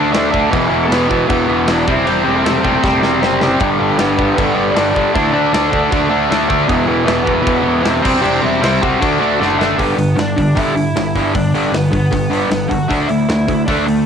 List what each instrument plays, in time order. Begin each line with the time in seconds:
Already playing: picked electric bass D2, distorted electric guitar D3 A3 D4
0.12 picked electric bass D2, distorted electric guitar D3 A3 D4, snare, crash
0.31 distorted electric guitar D3 A3 D4, kick
0.50 picked electric bass E1, distorted electric guitar E2 B2 E3, kick, crash
0.69 picked electric bass E1, distorted electric guitar E2 B2 E3
0.85 lead electric guitar A4
0.89 picked electric bass E1, distorted electric guitar E2 B2 E3, lead electric guitar B4, snare, crash
0.93 lead electric guitar B3
1.09 distorted electric guitar E2 B2 E3, kick
1.29 picked electric bass E1, distorted electric guitar E2 B2 E3, lead electric guitar B3 B4, kick, crash
1.48 picked electric bass E1, distorted electric guitar E2 B2 E3
1.67 picked electric bass E1, distorted electric guitar E2 B2 E3, lead electric guitar D4, snare, crash
1.73 lead electric guitar D5
1.87 picked electric bass E1, distorted electric guitar C3 G3 C4, lead electric guitar E4 E5, kick
2.04 picked electric bass E1, distorted electric guitar C3 G3 C4, lead electric guitar C4 C5, crash
2.24 picked electric bass E1, distorted electric guitar C3 G3 C4, lead electric guitar A3
2.29 lead electric guitar A4
2.44 picked electric bass E1, distorted electric guitar C3 G3 C4, snare, crash
2.63 distorted electric guitar C3 G3 C4, kick
2.84 picked electric bass E1, distorted electric guitar C3 G3 C4, kick, snare
3.02 picked electric bass E1, distorted electric guitar C3 G3 C4, snare
3.22 picked electric bass F#1, distorted electric guitar C3 G3 C4, snare
3.41 distorted electric guitar C3 G3 C4, snare
3.60 picked electric bass G1, distorted electric guitar G2 D3 G3, kick, crash
3.80 picked electric bass G1, distorted electric guitar G2 D3 G3
3.98 picked electric bass G1, distorted electric guitar G2 D3 G3, lead electric guitar B3 B4, snare, crash
4.17 distorted electric guitar G2 D3 G3, kick
4.35 picked electric bass G1, distorted electric guitar G2 D3 G3, lead electric guitar B3 B4, kick, crash
4.55 picked electric bass G1, distorted electric guitar G2 D3 G3
4.71 distorted electric guitar G2, lead electric guitar D5
4.75 picked electric bass G1, distorted electric guitar D3 G3, lead electric guitar D4, snare, crash
4.90 distorted electric guitar G2 D3, lead electric guitar D5
4.94 distorted electric guitar G3, lead electric guitar D4, kick
5.12 picked electric bass D2, distorted electric guitar D3 A3 D4, lead electric guitar E5, crash
5.16 lead electric guitar E4, kick
5.31 picked electric bass D2, distorted electric guitar D3 A3 D4, lead electric guitar D5
5.36 lead electric guitar D4
5.53 picked electric bass D2, distorted electric guitar D3 A3 D4, snare, crash
5.71 distorted electric guitar D3 A3 D4, kick
5.91 picked electric bass D2, distorted electric guitar D3 A3 D4, kick, crash
6.10 picked electric bass D2, distorted electric guitar D3 A3 D4
6.30 picked electric bass D2, distorted electric guitar D3 A3 D4, snare, crash
6.49 distorted electric guitar D3 A3 D4, kick
6.67 picked electric bass E1, distorted electric guitar E2 B2 E3, kick, crash
6.87 picked electric bass E1, distorted electric guitar E2 B2 E3
7.05 picked electric bass E1, distorted electric guitar E2 B2 E3, lead electric guitar B3 B4, snare, crash
7.24 distorted electric guitar E2 B2 E3, kick
7.42 distorted electric guitar E2 B2 E3, lead electric guitar B3 B4
7.46 picked electric bass E1, kick, crash
7.63 distorted electric guitar E2 B2 E3
7.67 picked electric bass E1
7.83 picked electric bass E1, distorted electric guitar E2 B2 E3, lead electric guitar C4 C5, snare, crash
8.01 picked electric bass E1, distorted electric guitar C3 G3 C4, kick, crash
8.22 picked electric bass E1, distorted electric guitar C3 G3 C4, lead electric guitar D4 D5, crash
8.41 picked electric bass E1, distorted electric guitar C3 G3 C4, lead electric guitar E4 E5
8.61 picked electric bass C2, distorted electric guitar C3 G3 C4, snare, crash
8.81 distorted electric guitar C3 G3 C4, lead electric guitar F#4 F#5, kick
9.00 picked electric bass D2, distorted electric guitar D3 A3 D4, kick, crash
9.19 picked electric bass D2, distorted electric guitar D3 A3 D4
9.39 picked electric bass F#1, distorted electric guitar D3 A3 D4, lead electric guitar A3 A4, snare
9.58 distorted electric guitar D3 A3 D4, snare
9.77 picked electric bass G1, distorted electric guitar G2 D3 G3, lead electric guitar B3 B4, kick, open hi-hat
9.96 picked electric bass G1, distorted electric guitar G2 D3, open hi-hat
10.16 picked electric bass G1, distorted electric guitar G2 D3, lead electric guitar D5, snare, open hi-hat
10.20 lead electric guitar D4
10.37 picked electric bass G1, distorted electric guitar G2 D3, kick, open hi-hat
10.55 picked electric bass G1, distorted electric guitar G2 D3 G3, lead electric guitar E4 E5, kick, open hi-hat
10.75 distorted electric guitar G2 D3, open hi-hat
10.95 picked electric bass G1, distorted electric guitar G2 D3, snare, open hi-hat
11.15 picked electric bass G1, distorted electric guitar G2 D3 G3, kick, open hi-hat
11.34 picked electric bass G1, distorted electric guitar G2 D3, lead electric guitar D4 D5, kick, open hi-hat
11.52 picked electric bass G1, distorted electric guitar G2 D3 G3, open hi-hat
11.72 picked electric bass G1, distorted electric guitar G2 D3, lead electric guitar B3 B4, snare, open hi-hat
11.91 picked electric bass G1, distorted electric guitar G2 D3, lead electric guitar B4, kick, open hi-hat
11.95 lead electric guitar B3
12.11 picked electric bass G1, distorted electric guitar G2 D3, kick, open hi-hat
12.30 distorted electric guitar G2 D3 G3, open hi-hat
12.49 picked electric bass G1, distorted electric guitar G2 D3, snare, open hi-hat
12.68 picked electric bass G1, distorted electric guitar G2 D3, lead electric guitar F#4 F#5, kick, open hi-hat
12.89 picked electric bass D2, distorted electric guitar D3 A3 D4, kick, open hi-hat
13.00 lead electric guitar D5
13.08 picked electric bass D2, distorted electric guitar D3 A3, lead electric guitar E4 E5, open hi-hat
13.29 picked electric bass D2, distorted electric guitar D3 A3, snare, open hi-hat
13.48 picked electric bass D2, distorted electric guitar D3 A3, kick, open hi-hat
13.66 picked electric bass D2, distorted electric guitar D3 A3 D4, lead electric guitar D4 D5, kick, open hi-hat
13.86 distorted electric guitar D3 A3, lead electric guitar A3 A4, open hi-hat